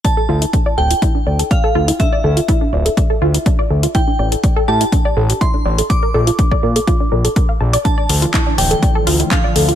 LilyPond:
<<
  \new Staff \with { instrumentName = "Synth bell" } { \time 4/4 \key d \minor \tempo 4 = 123 a''4. g''4. f''4 | e''1 | g''4. a''4. c'''4 | d'''1 |
a''4. g''4. f''4 | }
  \new Staff \with { instrumentName = "Synth pluck" } { \time 4/4 \key d \minor d''16 a'16 f'16 e'16 d'16 d''16 a'16 f'16 e'16 d'16 d''16 a'16 d''16 a'16 f'16 e'16 | d'16 d''16 a'16 f'16 e'16 d'16 d''16 a'16 d''16 a'16 f'16 e'16 d'16 d''16 a'16 f'16 | e'16 d'16 d''16 a'16 d''16 a'16 g'16 e'16 d'16 d''16 a'16 g'16 e'16 d'16 d''16 a'16 | d''16 bes'16 a'16 f'16 d'16 d''16 bes'16 a'16 f'16 d'16 bes'16 a'16 bes'16 f''16 a''16 d''16 |
d'16 d''16 a'16 f'16 e'16 d'16 d''16 a'16 d''16 a'16 f'16 e'16 d'16 d''16 a'16 f'16 | }
  \new Staff \with { instrumentName = "Analog synth pad" } { \clef bass \time 4/4 \key d \minor r1 | r1 | r1 | r1 |
<d e f a>1 | }
  \new Staff \with { instrumentName = "Analog synth bass" } { \clef bass \time 4/4 \key d \minor r8 d,8 r8 d,,8 r8 d,8 r8 d,8 | r8 d,8 r8 d,,8 r8 d,8 r8 d,8 | r8 a,,8 r8 a,8 r8 a,,8 r8 a,,8 | r8 bes,,8 r8 bes,8 r8 bes,,8 r8 bes,,8 |
r8 d,8 r8 d,,8 r8 d,8 r8 d,8 | }
  \new DrumStaff \with { instrumentName = "Drums" } \drummode { \time 4/4 <hh bd>8. hh16 <hh bd>8. hh16 <hh bd>8. hh16 <hh bd>8. hh16 | <hh bd>8. hh16 <hh bd>8. hh16 <hh bd>8. hh16 <hh bd>8. hh16 | <hh bd>8. hh16 <hh bd>8. hh16 <hh bd>8. hh16 <hh bd>8. hh16 | <hh bd>8. hh16 <hh bd>16 bd8 hh16 <hh bd>8. hh16 <hh bd>8. hh16 |
<hh bd>8 hho16 hh16 <hc hh bd>8 hho16 hh16 <hh bd>8 hho16 hh16 <hc hh bd>8 hho16 hh16 | }
>>